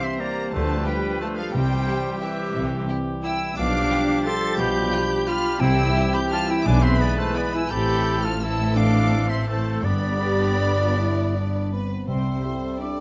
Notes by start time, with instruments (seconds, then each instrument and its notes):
Already playing: trombone section E3 G3, french horn section C4 G4, trumpet section C5
0.02 cor anglais C4, viola section C4, flute E5, violin section C6
0.19 cor anglais A#3, viola section A#3, violin section E4 G4 A#5, flute D5
0.51 double bass section D2, cello section D3, trombone section F3, viola section A3, cor anglais A3, french horn section D4, trumpet section B4, flute C5, violin section A5
0.85 cor anglais G3, viola section G3, violin section F4 G4 G5, flute B4
1.20 cor anglais A3, viola section A3, violin section F4 G4 A5, flute C5
1.36 cor anglais F3, flute A4, violin section F5
1.40 viola section F3
1.52 double bass section C2, cello section C3, timpani C3, trombone section E3 G3, cor anglais G3, viola section G3, french horn section C4 G4, trumpet section G4, flute C5, violin section G5
1.87 violin section E4 G4
2.20 viola section E3, cor anglais E3, violin section E4 G4 E5, flute G4
2.54 double bass section C2, cello section C3
2.89 violin section E4 G4
3.23 cor anglais E4, viola section E4, violin section E4 G4 E6, flute G5
3.55 double bass section B1, cello section B2, trombone section F3 G3, cor anglais D4, viola section D4, french horn section D4 G4, trumpet section G4, flute F5, violin section D6
3.91 violin section F4 G4
4.24 violin section F4 G4 A6, viola section A4, cor anglais A4, flute C6
4.57 double bass section B1, cello section B2, viola section G4, cor anglais G4, flute B5, violin section G6
4.91 violin section F4 G4
5.26 violin section F4 G4 F6, viola section F4, cor anglais F4, flute B5
5.60 double bass section C2, cello section C3, timpani C3, trombone section E3 G3, french horn section C4 E4, viola section E4, cor anglais E4, trumpet section G4, flute G5, violin section E6
5.95 violin section E4 G4
6.13 viola section G4, cor anglais G4, flute B5, violin section G6
6.31 violin section E4 G4 F6, viola section F4, cor anglais F4, flute A5
6.47 viola section E4, cor anglais E4, flute G5, violin section E6
6.64 double bass section B1, cello section B2, trombone section G#3, french horn section B3, cor anglais D4, viola section D4, trumpet section B4, flute G#5, violin section D6
6.81 cor anglais C4, viola section C4, flute E5, violin section C6
6.98 cor anglais B3, viola section B3, violin section E4 G#4 B5, flute D5
7.17 viola section A3, cor anglais A3, flute C5, violin section A5
7.34 viola section B3, cor anglais B3, violin section E4 G#4 B5, flute D5
7.54 viola section E4, cor anglais E4, flute G#5, violin section E6
7.69 double bass section A1, cello section A2, trombone section E3 A3, violin section C4 A4 G6, french horn section C4 E4, viola section G4, cor anglais G4, trumpet section A4, flute B5
8.23 viola section F4, cor anglais F4, flute A5, violin section F6
8.41 trombone section E3 A3, violin section C4 A4 E6, french horn section C4 E4, cor anglais E4, viola section E4, trumpet section A4, flute A5
8.75 cor anglais D4, viola section D4, flute F5, violin section D6
9.29 viola section C4, cor anglais C4, flute E5, violin section C6
9.46 trombone section E3 A3, viola section A3, cor anglais A3, violin section C4 A4 A5, french horn section C4 E4, trumpet section A4, flute C5
9.83 double bass section G1, timpani G2, cello section G2, trombone section D3 G3, viola section B3, cor anglais B3, violin section D4 D5 B5, french horn section D4 G4, trumpet section D5, flute D5
10.22 french horn section G4
10.80 french horn section F4
10.99 french horn section E4
11.36 french horn section D4
11.72 french horn section B3 C4, violin section B4, flute B5
12.07 double bass section C2, timpani C3, cello section C3, bassoon G3, french horn section C4, violin section C5, cor anglais E5, flute C6
12.43 trombone section G3 E4, viola section G4 E5, violin section A4
12.79 trombone section G3 E4, french horn section D4, viola section G4 E5, violin section D5, flute D6